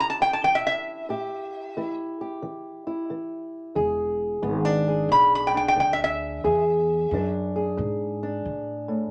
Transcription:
Already playing: steel-string acoustic guitar E3 C#4 E4 G4
0.00 resonator guitar played with a steel bar A#5
0.10 resonator guitar played with a steel bar A5
0.20 steel-string acoustic guitar E4, resonator guitar played with a steel bar G5
0.33 resonator guitar played with a steel bar A5
0.43 steel-string acoustic guitar E3, resonator guitar played with a steel bar G5
0.55 resonator guitar played with a steel bar E5
0.67 resonator guitar played with a steel bar E5
1.09 steel-string acoustic guitar A2 G4
1.77 steel-string acoustic guitar E3 E4
2.21 steel-string acoustic guitar G4
2.42 steel-string acoustic guitar E3
2.87 steel-string acoustic guitar E4
3.10 steel-string acoustic guitar E3
3.75 upright bass E1, steel-string acoustic guitar E2 G#4
4.42 upright bass G#1, steel-string acoustic guitar E3 B3
4.65 steel-string acoustic guitar D4
4.88 steel-string acoustic guitar G#4
5.09 upright bass B1, steel-string acoustic guitar B2, resonator guitar played with a steel bar B5
5.35 resonator guitar played with a steel bar B5
5.47 resonator guitar played with a steel bar G5
5.54 steel-string acoustic guitar D4, resonator guitar played with a steel bar G5
5.68 resonator guitar played with a steel bar G5
5.76 upright bass D2, steel-string acoustic guitar E3, resonator guitar played with a steel bar G5
5.93 resonator guitar played with a steel bar E5
6.04 resonator guitar played with a steel bar E5
6.44 steel-string acoustic guitar E2 G#4, upright bass E2
7.11 upright bass F#2, steel-string acoustic guitar E3 D4
7.56 steel-string acoustic guitar G#4
7.77 upright bass G#2, steel-string acoustic guitar B2
8.23 steel-string acoustic guitar D4
8.45 upright bass A2
8.88 steel-string acoustic guitar A2

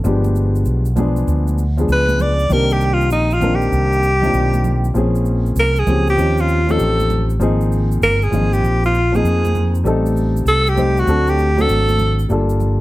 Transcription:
0.04 fretless electric bass G1, grand piano F3 G#3 B3 D4 G4, shaker
0.24 high conga, shaker
0.36 shaker
0.55 shaker
0.65 fretless electric bass B1, shaker
0.85 shaker
0.96 grand piano F3 G#3 B3 D4 G#4, high conga, low conga, shaker
1.16 shaker
1.28 fretless electric bass D2, high conga, shaker
1.47 shaker
1.58 shaker
1.77 grand piano F3 G#3 B3 D4 G#4, high conga, shaker
1.89 fretless electric bass C#2, alto saxophone B4, shaker
2.09 high conga, shaker
2.19 alto saxophone D5, low conga, shaker
2.39 shaker
2.49 fretless electric bass C2, grand piano D#3 A#3 C4 D4 G4, alto saxophone A#4, shaker
2.70 alto saxophone G4, shaker
2.81 shaker
2.93 alto saxophone F4
3.01 shaker
3.10 fretless electric bass A#1, alto saxophone D#4, shaker
3.31 alto saxophone F4, shaker
3.40 grand piano D#3 A#3 C4 D4 A#4, low conga, shaker
3.55 alto saxophone G4
3.61 shaker
3.72 fretless electric bass C2, shaker
3.92 shaker
4.03 shaker
4.22 grand piano D#3 A#3 C4 D4 F4, high conga, shaker
4.33 fretless electric bass B1, shaker
4.53 high conga, shaker
4.64 low conga, shaker
4.84 shaker
4.94 fretless electric bass A#1, grand piano F3 A#3 C4 C#4 G#4, shaker
5.15 shaker
5.26 shaker
5.46 shaker
5.56 fretless electric bass C2, alto saxophone A#4, shaker
5.76 alto saxophone G#4, shaker
5.87 fretless electric bass C#2, grand piano F3 A#3 C4 C#4 G4, low conga, shaker
6.07 alto saxophone G4, shaker
6.17 fretless electric bass D#2, grand piano F3 C4 C#4 D#4 G4, shaker
6.38 alto saxophone F4, shaker
6.49 shaker
6.67 grand piano F3 C4 C#4 D#4 F4, alto saxophone A4, high conga, shaker
6.77 fretless electric bass A1, grand piano G4, shaker
7.00 high conga, shaker
7.10 low conga, shaker
7.30 shaker
7.39 fretless electric bass G#1, grand piano F3 A#3 C4 D#4 G#4, shaker
7.61 shaker
7.72 shaker
7.92 shaker
8.01 fretless electric bass G1, alto saxophone A#4, shaker
8.22 alto saxophone G#4, shaker
8.31 fretless electric bass G#1, grand piano F3 A#3 C4 D#4 F4, low conga, shaker
8.53 alto saxophone G4, shaker
8.62 fretless electric bass A#1, shaker
8.84 alto saxophone F4, shaker
8.94 shaker
9.12 grand piano F3 A#3 C4 D#4 G#4, alto saxophone G#4, high conga, shaker
9.24 fretless electric bass F2, shaker
9.45 high conga, shaker
9.55 low conga, shaker
9.75 shaker
9.84 fretless electric bass A1, grand piano G3 A3 C4 D#4 A4, shaker
10.06 shaker
10.17 shaker
10.37 shaker
10.45 fretless electric bass C2, alto saxophone A4, shaker
10.67 alto saxophone G4, shaker
10.75 grand piano G3 A3 C4 D#4 C5, low conga, shaker
10.97 alto saxophone F#4, shaker
11.06 fretless electric bass D2, grand piano F#3 A3 C4 D4 A4, shaker
11.27 alto saxophone G4, shaker
11.38 shaker
11.56 grand piano F#3 A3 C4 D4 F#4, high conga, shaker
11.61 alto saxophone A4
11.69 fretless electric bass G#1, shaker
11.89 high conga, shaker
11.99 low conga, shaker
12.19 shaker
12.29 fretless electric bass G1, grand piano G3 A#3 D4 F4 A4, shaker
12.49 shaker
12.60 low conga, shaker

